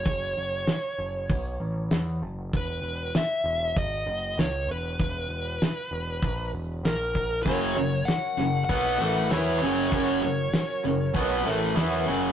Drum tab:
HH |o-o-o-o-|o-o-o-o-|o-o-o-o-|o-o-o-o-|
SD |--o---o-|--o---o-|--o---o-|--oo--o-|
BD |o---o---|o---o---|o---o--o|o---o---|

HH |o-o-o-o-|
SD |--o---o-|
BD |o---o---|